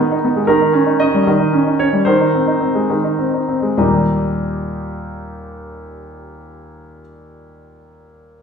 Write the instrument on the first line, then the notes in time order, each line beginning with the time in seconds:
grand piano
Already playing: D#3 B3 G#4
0.12 D#4
0.25 B3
0.36 G#3
0.47 D#3 A#4
0.61 D#4
0.73 C#4
0.86 D#4
1.00 C#4 D#5
1.14 G3
1.27 D#3
1.40 D#4
1.53 C#4
1.67 D#4
1.79 C#4 C#5
1.93 G3
2.05 D#3 C5
2.21 D#4
2.35 C4
2.48 D#4
2.61 C4
2.75 G#3
2.90 D#3
3.04 D#4
3.19 C4
3.34 D#4
3.49 C4
3.62 G#3
3.78 D#2 A#2 G3 A#3 D#4 G4 D#5